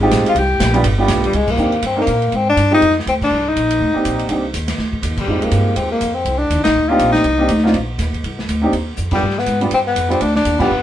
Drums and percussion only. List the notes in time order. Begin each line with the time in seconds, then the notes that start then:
0.11 kick, snare, hi-hat pedal, ride
0.26 ride
0.35 kick, ride
0.60 kick, snare, hi-hat pedal, ride
0.74 ride
0.84 kick, ride
1.08 kick, snare, hi-hat pedal, ride
1.24 ride
1.33 kick, ride
1.48 kick, crash
1.57 hi-hat pedal
1.72 ride
1.82 kick, ride
2.07 kick, hi-hat pedal, ride
2.22 ride
2.32 kick, ride
2.57 kick, hi-hat pedal, ride
2.82 kick, ride
2.90 snare
2.99 snare
3.07 kick, hi-hat pedal, ride
3.22 kick, crash
3.56 kick, hi-hat pedal, ride
3.71 ride
3.81 kick
4.05 kick, hi-hat pedal, ride
4.19 ride
4.29 kick, ride
4.54 kick, hi-hat pedal, ride
4.68 snare, ride
4.78 kick, snare
4.93 kick
5.03 kick, hi-hat pedal, ride
5.17 kick, crash
5.42 ride
5.51 kick, hi-hat pedal, ride
5.76 kick, ride
6.01 kick, hi-hat pedal, ride
6.25 kick, ride
6.50 kick, hi-hat pedal, ride
6.65 snare, ride
6.99 kick, hi-hat pedal, ride
7.14 snare, ride
7.24 kick, ride
7.49 kick, hi-hat pedal, ride
7.57 snare
7.66 snare
7.74 kick, ride
7.99 kick, snare, hi-hat pedal, ride
8.14 kick, ride
8.24 kick, ride
8.39 snare
8.48 kick, hi-hat pedal, ride
8.73 kick, ride
8.97 hi-hat pedal
9.11 kick, crash
9.30 snare
9.38 snare
9.46 kick, hi-hat pedal, ride
9.61 ride
9.71 kick, ride
9.96 kick, hi-hat pedal, ride
10.11 ride
10.21 kick, ride
10.35 snare
10.45 kick, hi-hat pedal, ride
10.60 kick, crash